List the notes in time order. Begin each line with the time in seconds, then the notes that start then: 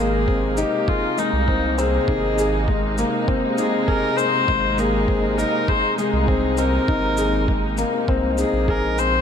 Already playing: G#1 C3 G#3 A#3 D#4
0.00 G#4
0.28 C4, kick
0.57 D#4 G4, shaker
0.88 F4 G#4, kick
1.18 G#3 D#4, shaker
1.33 C2
1.48 C4, kick
1.78 C4 G#4, shaker
2.08 G#1 D#4, kick
2.38 G#4, shaker
2.68 G#3, kick
2.98 A#3, shaker
3.28 C4, kick
3.58 D#4 G#4, shaker
3.87 G#4 A#4, kick
4.17 C4 C5, shaker
4.48 G#1 G#3, kick
4.78 A#3 G#4, shaker
5.08 C4, kick
5.38 D#4 A#4, shaker
5.68 G#4 C5, kick
5.98 G#3 G#4, shaker
6.13 C2
6.28 C4, kick
6.57 C4 A#4, shaker
6.88 G#1 D#4, kick
7.17 G#4, shaker
7.48 G#3, kick
7.78 A#3, shaker
8.08 C2 C4, kick
8.38 D#4 G#4, shaker
8.53 A#1
8.68 G#4 A#4, kick
8.98 C4 C5, shaker